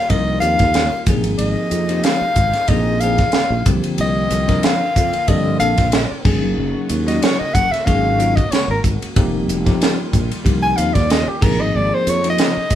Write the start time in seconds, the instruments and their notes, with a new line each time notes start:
Already playing: analog synth pad D#3 G3 A#3 F4, soprano saxophone F5
0.10 fretless electric bass C2, tine electric piano F3 A#3 C4 D#4 A#4, soprano saxophone D#5, kick, ride
0.41 fretless electric bass D#2, tine electric piano F3 A#3 C4 D#4 G4, soprano saxophone F5, hi-hat pedal, ride
0.59 fretless electric bass D#2, tine electric piano D#4 G4, kick, snare, ride
0.74 snare, ride
0.92 muted fretless electric bass stroke
1.05 fretless electric bass A#1, analog synth pad C3 G#3 A#3 D#4, tine electric piano F3 A#3 C4 D#4 G#4, kick, hi-hat pedal, ride
1.24 fretless electric bass G#1, ride
1.38 fretless electric bass G#1, soprano saxophone D#5, ride
1.71 fretless electric bass F2, hi-hat pedal, ride
1.89 tine electric piano F3 A#3 C4 D#4 G4, ride
2.04 soprano saxophone F5, snare, ride
2.21 tine electric piano D#4 G4, muted fretless electric bass stroke
2.36 fretless electric bass G#1, kick, hi-hat pedal, ride
2.53 muted fretless electric bass stroke, snare, ride
2.68 fretless electric bass A#1, tine electric piano F3 A#3 C4 D#4 G#4, soprano saxophone D#5, kick, ride
3.00 tine electric piano F3 A#3 C4 D#4 G#4, soprano saxophone F5, hi-hat pedal, ride
3.18 tine electric piano D#4 G#4, kick, snare, ride
3.32 muted fretless electric bass stroke, snare, ride
3.50 fretless electric bass A#1
3.65 fretless electric bass C2, analog synth pad D3 C4 F4, tine electric piano D3 F3 A#3 C4 G4, kick, hi-hat pedal, ride
3.84 ride
3.98 fretless electric bass C2, soprano saxophone D#5, ride
4.30 fretless electric bass C2, hi-hat pedal, ride
4.48 tine electric piano F3 A#3 C4 D4 A#4, kick, snare, ride
4.63 soprano saxophone F5, snare, ride
4.80 tine electric piano D4 G4
4.96 fretless electric bass F2, kick, hi-hat pedal, ride
5.13 muted fretless electric bass stroke, ride
5.27 fretless electric bass G2, tine electric piano D3 F3 A#3 C4 A4, soprano saxophone D#5, kick, ride
5.60 fretless electric bass A#1, tine electric piano F3 A#3 C4 D4 A4, soprano saxophone F5, hi-hat pedal, ride
5.78 fretless electric bass A#1, tine electric piano D4 A#4, kick, snare, ride
5.92 snare, ride
6.12 muted fretless electric bass stroke
6.25 fretless electric bass G#1, analog synth pad C#3 G#3 F#4, tine electric piano F#3 A#3 C#4 D#4 G#4, kick, crash
6.44 fretless electric bass F#1
6.58 fretless electric bass F#1
6.89 fretless electric bass D#2, hi-hat pedal, ride
7.07 tine electric piano F#3 A#3 C#4 D#4 F#4, soprano saxophone D#5, snare, ride
7.22 soprano saxophone C#5, snare, ride
7.39 tine electric piano D#4 A#4, soprano saxophone D#5, muted fretless electric bass stroke
7.54 fretless electric bass F#1, soprano saxophone F#5, kick, hi-hat pedal, ride
7.72 soprano saxophone E5, muted fretless electric bass stroke, snare, ride
7.85 fretless electric bass G#1, tine electric piano F#3 A#3 C#4 D#4 G#4, soprano saxophone F5, kick, ride
8.19 tine electric piano F#3 A#3 C#4 D#4 F4, hi-hat pedal, ride
8.36 tine electric piano D#4 F#4, soprano saxophone D#5, kick, ride
8.51 soprano saxophone C#5, muted fretless electric bass stroke, snare, ride
8.68 fretless electric bass G#1, soprano saxophone A#4
8.84 fretless electric bass G#1, kick, hi-hat pedal, ride
9.02 muted fretless electric bass stroke, ride
9.14 fretless electric bass F1, analog synth pad D#3 G3 F4, tine electric piano F3 A#3 C4 D#4 G4, kick, ride
9.48 fretless electric bass F1, hi-hat pedal, ride
9.66 tine electric piano F3 A#3 C4 D#4 G4, kick, snare, ride
9.82 snare, ride
9.99 tine electric piano D#4 A#4
10.13 fretless electric bass A#1, kick, hi-hat pedal, ride
10.31 muted fretless electric bass stroke, ride
10.44 fretless electric bass C2, tine electric piano F3 A#3 C4 D#4 G4, kick, ride
10.63 soprano saxophone G#5
10.77 fretless electric bass D#2, tine electric piano F3 A#3 C4 D#4 A#4, soprano saxophone F5, hi-hat pedal, ride
10.94 fretless electric bass D#2, tine electric piano D#4 G4, soprano saxophone D5, kick, snare, ride
11.10 soprano saxophone D#5, snare, ride
11.28 soprano saxophone G4, muted fretless electric bass stroke
11.41 fretless electric bass A#1, analog synth pad C3 G#3 D#4, tine electric piano F3 A#3 C4 D#4 G#4, soprano saxophone A#4, kick, crash
11.61 fretless electric bass G#1, soprano saxophone D#5
11.75 fretless electric bass G#1, soprano saxophone D5
11.94 soprano saxophone C5
12.07 fretless electric bass F2, soprano saxophone C#5, hi-hat pedal, ride
12.24 tine electric piano F3 A#3 C4 D#4 F4, ride
12.30 soprano saxophone D#5
12.38 snare, ride
12.57 tine electric piano D#4 A#4, muted fretless electric bass stroke
12.70 fretless electric bass G#1, kick, hi-hat pedal, ride